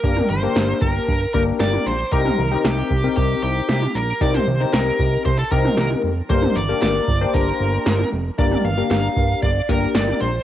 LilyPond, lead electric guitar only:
\new Staff \with { instrumentName = "Lead electric guitar" } { \time 4/4 \key g \minor \tempo 4 = 115 bes'8 c''4 bes'4 bes'8 d''8 c''8 | bes'4 g'4 g'8 g'4 bes'8 | d''16 c''8. bes'4 c''16 a'16 bes'4 r8 | c''8 d''8 d''4 bes'4. r8 |
d''8 f''8 f''4 d''8 bes'8 d''8 c''8 | }